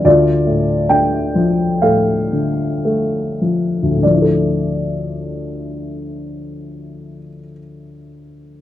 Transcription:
0.05 D2 F4 D5
0.47 A2
0.89 D3 G5
1.35 F3
1.82 A2 A4 F5
2.33 D3
2.85 A3
3.42 F3
3.83 D2
3.91 A2
3.98 D3
4.03 F3 D5
4.14 E4
4.22 A4

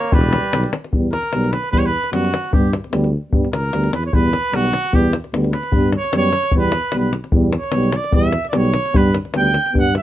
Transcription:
Already playing: A#3 C#5
0.04 davul high
0.12 E1 G3 B4, davul low
0.24 davul high
0.33 davul high
0.44 davul high
0.53 B1, davul high
0.64 davul high
0.73 davul high
0.84 davul high
0.93 E2 G3 B3, davul low
1.12 A#4, davul high
1.23 davul high
1.33 B1 G3 B3, davul high
1.44 davul high
1.52 B4, davul high
1.63 davul high
1.71 E2 G3 B3 B4, davul low
1.78 C#5
1.86 B4
2.04 davul high
2.12 F#2 G3 B3 F#4, davul high
2.25 davul high
2.34 davul high
2.44 davul high
2.53 G2 G3 B3 G4, davul low
2.73 davul high
2.84 davul high
2.92 D2 G3 B3, davul high
3.04 davul high
3.32 G2 G3 B3, davul low
3.44 davul high
3.53 C#2 A#4, davul high
3.64 davul high
3.73 D2 G3 B3, davul high
3.84 davul high
3.93 E2 B4, davul high
4.03 C#5, davul high
4.13 E2 G3 B3 B4, davul low
4.33 davul high
4.52 B1 G3 B3 F#4, davul high
4.64 davul high
4.73 davul high
4.85 davul high
4.93 E2 G3 B3 G4, davul low
5.13 davul high
5.24 davul high
5.33 D2 G3 B3, davul high
5.44 davul high
5.53 B4, davul high
5.63 davul high
5.72 G2 G3 B3, davul low
5.93 davul high
5.97 C#5
6.04 davul high
6.13 F#2 G3 B3, davul high
6.17 C#5
6.23 davul high
6.33 davul high
6.43 davul high
6.51 E2 G3 B3, davul low
6.58 B4
6.72 davul high
6.92 B1 G3 B3, davul high
6.98 B4
7.13 davul high
7.24 davul high
7.32 E2 G3 B3, davul low
7.53 davul high
7.58 C#5
7.63 davul high
7.72 B1 G3 B3, davul high
7.83 davul high
7.92 D5, davul high
8.04 davul high
8.12 E2 G3 B3 E5, davul low
8.32 davul high
8.45 davul high
8.49 D5
8.53 B1 G3 B3 C#5, davul high
8.65 davul high
8.74 davul high
8.85 davul high
8.93 G2 G3 B3 B4, davul low
9.14 davul high
9.25 davul high
9.34 D2 G3 B3, davul high
9.38 G5
9.45 davul high
9.54 davul high
9.66 davul high
9.73 G2 G3 B3, davul low
9.79 F#5
9.95 E5, davul high

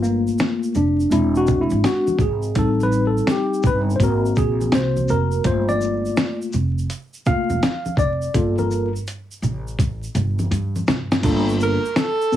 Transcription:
Already playing: G1 A3 F4
0.03 A#3, shaker
0.27 shaker
0.38 snare, closed hi-hat, shaker
0.63 shaker
0.75 F1 D4, low conga, shaker
1.00 shaker
1.10 E1 G#3 C4 D4 E4, closed hi-hat, shaker
1.35 F#4, shaker
1.47 kick, low conga, shaker
1.61 E4
1.70 G#1, high conga, shaker
1.84 F#4, snare, closed hi-hat, shaker
2.07 high conga, shaker
2.19 G#1 G#4, kick, low conga, shaker
2.42 shaker
2.55 A1 G3 C4 D#4 A4, kick, closed hi-hat, shaker
2.80 B4, high conga, shaker
2.92 shaker
3.07 A4
3.17 shaker
3.27 G4, snare, closed hi-hat, shaker
3.54 shaker
3.63 G1, kick, low conga, shaker
3.65 B4, shaker
3.90 shaker
3.96 G#1 C5
4.00 A#3 C4 F#4 A#4, kick, closed hi-hat, shaker
4.26 shaker
4.36 A#1, kick, low conga, shaker
4.37 G#4, shaker
4.61 high conga, shaker
4.72 C2 C5, snare, closed hi-hat, shaker
4.97 high conga, shaker
5.08 F1, low conga, shaker
5.10 A#4, shaker
5.32 shaker
5.44 G1 A3 A#3 F4 C5, kick, closed hi-hat, shaker
5.69 D5, high conga, shaker
5.81 shaker
6.06 shaker
6.17 snare, closed hi-hat, shaker
6.42 shaker
6.53 F1, low conga, shaker
6.78 shaker
6.90 closed hi-hat, shaker
7.14 shaker
7.26 A3 A#3 F4 F5, kick, low conga, shaker
7.50 E1, high conga, shaker
7.63 snare, closed hi-hat, shaker
7.86 high conga, shaker
7.97 F1 D5, kick, low conga, shaker
8.22 shaker
8.34 G1 A#3 F4 A4, kick, closed hi-hat, shaker
8.58 A#4, high conga, shaker
8.71 shaker
8.96 shaker
9.07 closed hi-hat, shaker
9.31 shaker
9.42 A1, low conga, shaker
9.68 shaker
9.79 kick, closed hi-hat, shaker
10.03 shaker
10.15 G1, closed hi-hat, low conga, shaker
10.39 high conga, shaker
10.51 G2, closed hi-hat, shaker
10.76 high conga, shaker
10.87 G2, snare, low conga, shaker
10.89 shaker
11.12 snare, shaker
11.22 G1 A3 D4 F4 A4, kick, closed hi-hat, crash, shaker
11.28 A#3
11.49 shaker
11.60 A#4, shaker
11.85 shaker
11.96 A4, snare, closed hi-hat, shaker
12.21 shaker
12.32 B3 C4 D4, low conga, shaker

